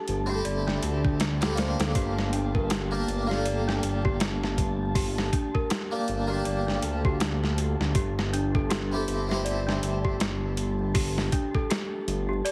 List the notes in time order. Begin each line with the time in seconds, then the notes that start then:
Already playing: A3 D4 G4 A4 A5
0.08 G1, closed hi-hat
0.26 C4 E4 G4
0.31 G4 A4
0.45 G1 D5, closed hi-hat
0.67 D4, snare
0.83 D2, closed hi-hat
1.04 D4, kick
1.20 snare, closed hi-hat
1.41 C4 E4 G4 A4, snare, closed hi-hat
1.54 A#3 D4 C5, snare, closed hi-hat
1.59 G4 C5
1.79 D2 A4, snare, closed hi-hat
1.95 G1 G4, kick, closed hi-hat
2.19 snare
2.33 D4, closed hi-hat
2.55 A#4, kick
2.70 G4, snare, closed hi-hat
2.91 A#3 D4 G4 A5
3.08 G1, closed hi-hat
3.27 A#3 D4 G4
3.31 G4 A4, snare
3.45 D5, closed hi-hat
3.68 D4, snare
3.83 G1, closed hi-hat
4.05 G4, kick
4.20 snare, closed hi-hat
4.43 snare
4.58 kick, closed hi-hat
4.95 G4, kick, open hi-hat
5.18 snare
5.33 D4, kick, closed hi-hat
5.55 A#4, kick
5.70 G4, snare, closed hi-hat
5.91 A#3 D4 G4 A5
6.08 G1, closed hi-hat
6.27 A#3 D4 G4
6.31 G4 A5
6.45 G1 D5, closed hi-hat
6.67 D4, snare
6.82 D2, closed hi-hat
7.05 G4, kick
7.20 snare, closed hi-hat
7.44 snare
7.58 closed hi-hat
7.80 D2, snare
7.95 G1 G4, kick, closed hi-hat
8.19 snare
8.33 D4, closed hi-hat
8.55 A4, kick
8.70 G4, snare, closed hi-hat
8.92 C4 E4 G4 A4
9.08 G1, closed hi-hat
9.27 C4 E4 G4
9.31 G4 C5, snare
9.44 D5, closed hi-hat
9.67 D4, snare
9.82 G1, closed hi-hat
10.05 G4, kick
10.20 snare, closed hi-hat
10.57 closed hi-hat
10.95 G4, kick, open hi-hat
11.18 snare
11.32 D4, kick, closed hi-hat
11.55 A4, kick
11.70 G4, snare, closed hi-hat
12.07 G1, closed hi-hat
12.29 G4
12.45 D5, closed hi-hat